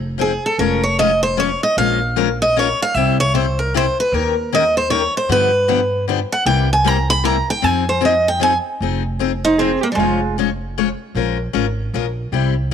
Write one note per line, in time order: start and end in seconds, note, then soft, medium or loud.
0.00 0.36 F1 medium
0.18 0.30 F3 medium
0.18 0.31 C4 medium
0.18 0.31 D#4 medium
0.18 0.31 G#4 medium
0.18 0.45 G#4 medium
0.46 0.59 A4 medium
0.58 1.53 F1 medium
0.58 0.81 F3 medium
0.58 0.81 G#3 medium
0.58 0.81 C#4 medium
0.58 0.81 F4 medium
0.58 0.83 A#4 medium
0.58 0.81 C#5 medium
0.83 0.98 C#5 medium
0.98 1.10 F3 medium
0.98 1.10 G#3 medium
0.98 1.11 C#4 medium
0.98 1.10 F4 loud
0.98 1.11 C#5 medium
0.98 1.22 D#5 loud
1.23 1.37 C5 medium
1.37 1.49 F3 medium
1.37 1.49 G#3 medium
1.37 1.49 C#4 medium
1.37 1.49 F4 medium
1.37 1.49 C#5 loud
1.37 1.62 C#5 medium
1.63 1.77 D#5 medium
1.77 2.71 A#1 medium
1.77 1.98 F3 medium
1.77 1.99 G#3 medium
1.77 1.99 C#4 medium
1.77 1.99 F4 medium
1.77 1.99 A#4 medium
1.77 2.37 F5 medium
2.16 2.27 F3 loud
2.16 2.28 G#3 loud
2.16 2.28 C#4 medium
2.16 2.28 F4 loud
2.16 2.28 A#4 loud
2.42 2.56 D#5 loud
2.56 2.67 F3 medium
2.56 2.67 G#3 medium
2.56 2.67 C#4 loud
2.56 2.67 F4 loud
2.56 2.67 A#4 loud
2.56 2.81 C#5 medium
2.82 2.94 F5 loud
2.94 3.88 C2 medium
2.94 3.17 C3 medium
2.94 3.17 G3 medium
2.94 3.16 C4 medium
2.94 3.17 E4 medium
2.94 3.17 G4 medium
2.94 3.18 E5 medium
3.20 3.34 C#5 loud
3.34 3.45 C3 medium
3.34 3.45 G3 medium
3.34 3.45 C4 medium
3.34 3.45 E4 medium
3.34 3.45 G4 loud
3.34 3.58 C5 medium
3.59 3.73 A#4 medium
3.74 3.84 C3 medium
3.74 3.84 G3 medium
3.74 3.85 C4 medium
3.74 3.85 E4 loud
3.74 3.85 G4 loud
3.74 3.98 C5 medium
4.00 4.14 B4 medium
4.12 5.06 D#2 medium
4.12 4.34 D#3 medium
4.12 4.34 A#3 medium
4.12 4.34 C#4 medium
4.12 4.34 G4 medium
4.12 4.52 A#4 medium
4.12 4.34 A#4 medium
4.52 4.63 D#3 medium
4.52 4.63 A#3 medium
4.52 4.63 C#4 medium
4.52 4.63 G4 loud
4.52 4.63 A#4 loud
4.52 4.76 D#5 loud
4.77 4.90 C5 medium
4.90 5.01 D#3 medium
4.90 5.01 A#3 medium
4.90 5.01 C#4 medium
4.90 5.01 G4 medium
4.90 5.01 A#4 loud
4.90 5.13 C#5 medium
5.17 5.30 C5 medium
5.29 6.22 G2 medium
5.29 5.50 D3 medium
5.29 5.50 F3 medium
5.29 5.50 B3 medium
5.29 5.50 D4 medium
5.29 5.50 G4 medium
5.29 6.04 B4 medium
5.68 5.79 D3 medium
5.68 5.79 F3 loud
5.68 5.79 B3 loud
5.68 5.79 D4 loud
5.68 5.79 G4 medium
6.08 6.18 D3 medium
6.08 6.19 F3 medium
6.08 6.19 B3 loud
6.08 6.19 D4 loud
6.08 6.19 G4 loud
6.32 6.46 F#5 medium
6.46 7.39 C2 loud
6.46 6.67 C3 medium
6.46 6.67 G3 medium
6.46 6.67 A#3 medium
6.46 6.67 E4 medium
6.46 6.68 G4 medium
6.46 6.69 G5 medium
6.73 6.87 G#5 loud
6.84 6.96 C3 loud
6.84 6.96 G3 medium
6.84 6.96 A#3 loud
6.84 6.96 E4 loud
6.84 6.96 G4 loud
6.84 7.10 A#5 loud
7.10 7.24 B5 loud
7.24 7.35 C3 medium
7.24 7.35 G3 loud
7.24 7.35 A#3 medium
7.24 7.35 E4 medium
7.24 7.35 G4 loud
7.24 7.48 A#5 medium
7.50 7.64 G5 medium
7.62 8.57 F2 medium
7.62 7.83 F3 medium
7.62 7.83 C4 medium
7.62 7.84 D#4 medium
7.62 7.84 G#4 medium
7.62 7.87 G#5 loud
7.89 8.02 C5 medium
8.01 8.12 F3 medium
8.01 8.12 C4 medium
8.01 8.13 D#4 loud
8.01 8.13 G#4 loud
8.05 8.27 D#5 medium
8.28 8.42 G5 medium
8.40 8.51 F3 medium
8.40 8.52 C4 medium
8.40 8.52 D#4 loud
8.40 8.52 G#4 loud
8.40 8.57 G#5 loud
8.80 9.74 F1 medium
8.80 9.02 F3 medium
8.80 9.02 C4 medium
8.80 9.02 D#4 medium
8.80 9.02 G#4 medium
9.19 9.30 F3 medium
9.19 9.31 C4 medium
9.19 9.31 D#4 medium
9.19 9.31 G#4 loud
9.45 9.58 D#4 medium
9.45 9.57 C5 medium
9.58 9.70 F3 medium
9.58 9.83 C4 medium
9.58 9.70 C4 medium
9.58 9.71 D#4 medium
9.58 9.80 G#4 medium
9.58 9.71 G#4 medium
9.81 9.87 A#3 medium
9.81 9.86 G4 medium
9.92 9.97 G3 medium
9.92 10.35 G#3 medium
9.92 9.99 D#4 soft
9.97 10.91 F1 medium
9.97 10.19 F3 medium
9.97 10.19 G#3 medium
9.97 10.19 C#4 medium
9.97 10.37 F4 medium
9.97 10.20 F4 medium
9.97 10.20 C#5 medium
10.38 10.48 F3 medium
10.38 10.49 G#3 medium
10.38 10.49 C#4 medium
10.38 10.49 F4 medium
10.38 10.49 C#5 medium
10.78 10.88 F3 medium
10.78 10.88 G#3 medium
10.78 10.88 C#4 medium
10.78 10.88 F4 loud
10.78 10.88 C#5 medium
11.15 11.46 A#1 medium
11.15 11.36 F3 medium
11.15 11.36 G#3 medium
11.15 11.37 C#4 medium
11.15 11.37 F4 medium
11.15 11.37 A#4 medium
11.53 11.87 G#1 medium
11.53 11.65 F3 medium
11.53 11.65 G#3 medium
11.53 11.65 C#4 medium
11.53 11.65 F4 medium
11.53 11.65 A#4 loud
11.93 12.26 A#1 medium
11.93 12.05 F3 medium
11.93 12.05 G#3 medium
11.93 12.05 C#4 medium
11.93 12.05 F4 medium
11.93 12.05 A#4 medium
12.32 12.74 C2 medium
12.32 12.53 C3 medium
12.32 12.53 G3 medium
12.32 12.54 C4 medium
12.32 12.54 E4 medium
12.32 12.54 G4 medium